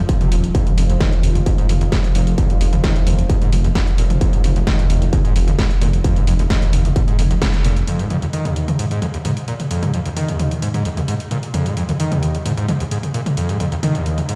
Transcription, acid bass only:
0.09 F2
0.21 C3
0.32 A#2
0.55 F2
0.67 G#2
0.78 F2
0.90 D#2
1.01 D#3
1.12 D#2
1.35 F2
1.46 G#2
1.58 G#2
1.69 F2
1.81 D#2
1.92 G#2
2.15 A#2
2.38 F2
2.50 G#2
2.61 F2
2.73 D#2
2.84 D#3
2.96 D#2
3.19 F2
3.30 G#2
3.41 G#2
3.52 F2
3.64 D#2
3.75 G#2
3.98 A#2
4.21 F2
4.33 G#2
4.44 F2
4.56 D#2
4.67 D#3
4.79 D#2
5.02 F2
5.13 G#2
5.25 G#2
5.36 F2
5.48 D#2
5.59 G#2
5.81 A#2
6.04 F2
6.16 G#2
6.27 F2
6.39 D#2
6.50 D#3
6.62 D#2
6.85 F2
6.96 G#2
7.08 G#2
7.19 F2
7.31 D#2
7.42 G#2
7.65 A#2
7.88 F2
7.99 G#2
8.10 F2
8.22 D#2
8.33 D#3
8.45 D#2
8.68 F2
8.79 G#2
8.91 G#2
9.02 F2
9.14 D#2
9.25 G#2
9.48 A#2
9.71 F2
9.83 G#2
9.94 F2
10.06 D#2
10.17 D#3
10.29 D#2
10.51 F2
10.62 G#2
10.74 G#2
10.85 F2
10.97 D#2
11.08 G#2
11.31 A#2
11.54 F2
11.66 G#2
11.77 F2
11.89 D#2
12.00 D#3
12.12 D#2
12.35 F2
12.46 G#2
12.58 G#2
12.69 F2
12.80 D#2
12.91 G#2
13.14 A#2
13.37 F2
13.49 G#2
13.60 F2
13.72 D#2
13.83 D#3
13.95 D#2
14.18 F2
14.29 G#2

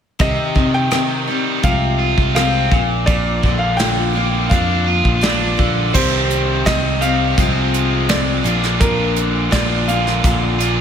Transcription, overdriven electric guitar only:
0.21 C3
0.56 D#3
0.93 D#3
1.28 G3
1.63 C3
1.99 F4
2.36 C4
2.72 A#2
3.07 A#2
3.43 D3
3.80 D3
4.15 A#3
4.51 D4
4.88 F4
5.23 D4
5.59 D3
5.93 C3 D#3 G3 C4 G4
7.01 C3 D#3 G3 C4 G4
7.37 C3 F3 G#3 C4 F4
8.44 A#2 D3 A#3 D4 F4
9.51 A#2 D3 A#3 D4 F4
10.58 A#2 D3 A#3 D4 F4

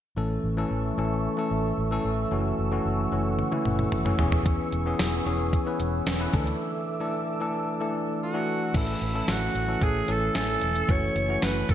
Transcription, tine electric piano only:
0.17 E3 A3 C#4 A4
0.57 E3 A3 C#4 A4
0.98 E3 A3 C#4 A4
1.37 E3 A3 C#4 A4
1.91 E3 A3 C#4 A4
2.31 E3 A3 C#4 F#4
2.72 E3 A3 C#4 F#4
3.12 E3 A3 C#4 F#4
3.52 E3 A3 C#4 E4
4.05 E3 A3 C#4 F#4
4.19 E3 B3 C#4 G#4
4.86 E3 B3 C#4 G#4
5.26 E3 B3 C#4 G#4
5.66 E3 B3 C#4 B4
6.20 E3 B3 C#4 B4
6.33 D3 A3 D4 A4
6.39 E3
7.00 E3 A3 D4 A4
7.40 E3 A3 D4 A4
7.80 E3 A3 D4 A4
8.34 E3 A3 D4 F#4
8.74 E3 A3 C#4 A4
9.14 E3 A3 C#4 A4
9.68 E3 A3 C#4 A4
10.08 E3 A3 C#4 A4
10.35 E3 A3 C#4 G#5
10.88 E3 A3 C#4 F#4
11.29 E3 A3 C#4 F#4

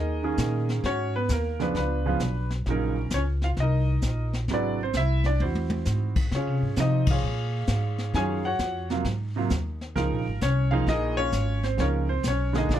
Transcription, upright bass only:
Already playing: D#2
0.38 A#2
0.84 G#2
1.29 D#2
1.75 C#2
2.20 B1
2.66 A#1
3.11 C#2
3.57 C2
4.03 A#1
4.48 G#1
4.94 C2
5.40 E2
5.86 G#2
6.31 C#3
6.47 C3
6.62 G#2
6.77 C3
7.23 A#2
7.68 G#2
8.14 F#2
8.59 F2
9.05 G#2
9.50 D#2
9.96 C#2
10.12 A#1
10.27 G#1
10.41 C2
10.87 A#1
11.32 G#1
11.78 C#2
12.23 B1
12.69 A#1

